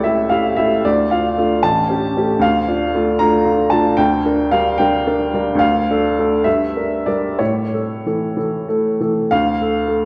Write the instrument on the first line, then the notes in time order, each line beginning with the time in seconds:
upright piano
Already playing: C#2 A3 E4 G4 C#5 D5
0.04 A3 E4 G4 E5
0.29 E4 G4 F5
0.56 A3 E4 G4 E5
0.85 D2 D5
1.11 D4 F4 F5
1.37 A3 D4 F4
1.63 A1 A5
1.89 C#4 G4
2.17 A3 C#4 G4
2.39 D2 F5
2.68 D4 F4
2.95 A3 D4 F4
3.19 A3 D4 F4 A#5
3.45 D4 F4
3.70 A3 D4 F4 A5
3.97 D2 G5
4.25 D4 A#4
4.51 G3 D4 A#4 F5
4.78 G3 D4 A#4 G5
5.07 D4 A#4
5.34 G3 D4 A#4
5.55 D2
5.59 F5
5.90 D4 A4
6.19 A3 D4 A4
6.44 G2 E5
6.76 D4 A#4
7.06 G3 D4 A#4 D5
7.39 A2 C#5
7.73 A3 A4
8.06 E3 A3 A4
8.37 E3 A3 A4
8.68 A3 A4
9.00 E3 A3 A4
9.31 D2 F5
9.61 A4
9.88 A3